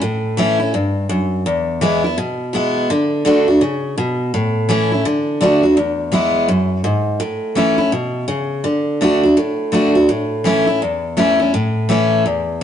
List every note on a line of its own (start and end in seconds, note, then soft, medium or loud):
0.02 0.71 A2 medium
0.37 0.59 E3 loud
0.37 0.60 A3 medium
0.37 0.60 C#4 medium
0.37 0.58 E4 loud
0.60 0.74 C#4 medium
0.60 0.73 E4 medium
0.74 1.09 G2 medium
1.09 1.44 F#2 medium
1.46 2.15 E2 medium
1.81 2.03 E3 medium
1.81 2.04 G#3 loud
1.81 2.04 B3 medium
1.81 2.03 E4 loud
2.04 2.18 B3 soft
2.04 2.17 E4 medium
2.18 2.87 B2 medium
2.53 2.88 E3 medium
2.53 2.88 G#3 medium
2.53 2.89 B3 loud
2.53 2.89 E4 loud
2.90 3.24 D3 medium
3.25 3.47 D3 loud
3.25 3.47 A3 loud
3.25 3.48 D4 medium
3.25 3.47 F#4 loud
3.48 3.62 D4 soft
3.48 3.61 F#4 medium
3.61 3.96 C#3 medium
3.98 4.32 B2 medium
4.34 5.03 A2 loud
4.69 4.91 E3 loud
4.69 4.91 A3 loud
4.69 4.92 C#4 loud
4.69 4.91 E4 loud
4.92 5.06 C#4 soft
4.92 5.05 E4 medium
5.05 5.39 D3 medium
5.41 5.63 D3 loud
5.41 5.63 A3 medium
5.41 5.63 D4 loud
5.41 5.62 F#4 medium
5.63 5.77 D4 soft
5.63 5.76 F#4 medium
5.77 6.46 E2 medium
6.12 6.47 E3 medium
6.12 6.47 G#3 loud
6.12 6.48 B3 loud
6.12 6.48 E4 loud
6.48 6.83 F#2 medium
6.84 7.19 G#2 loud
7.20 7.90 A2 medium
7.55 7.78 E3 medium
7.55 7.79 A3 medium
7.55 7.79 C#4 medium
7.55 7.77 E4 medium
7.78 7.93 C#4 medium
7.78 7.92 E4 medium
7.92 8.27 B2 medium
8.28 8.63 C#3 medium
8.64 9.00 D3 medium
9.01 9.23 D3 medium
9.01 9.23 A3 loud
9.01 9.23 D4 loud
9.01 9.22 F#4 medium
9.23 9.37 D4 soft
9.23 9.36 F#4 medium
9.37 10.06 A2 medium
9.72 9.94 D3 medium
9.72 9.95 A3 medium
9.72 9.95 D4 medium
9.72 9.94 F#4 loud
9.95 10.09 D4 medium
9.95 10.08 F#4 medium
10.09 10.78 A2 medium
10.44 10.67 E3 medium
10.44 10.67 A3 loud
10.44 10.67 C#4 loud
10.44 10.66 E4 loud
10.67 10.82 C#4 soft
10.67 10.80 E4 medium
10.82 11.51 E2 medium
11.17 11.39 E3 medium
11.17 11.39 A3 medium
11.17 11.40 C#4 loud
11.17 11.38 E4 medium
11.40 11.54 C#4 soft
11.40 11.53 E4 medium
11.54 12.23 A2 medium
11.89 12.24 E3 medium
11.89 12.24 A3 loud
11.89 12.25 C#4 medium
11.89 12.25 E4 loud
12.26 12.63 E2 medium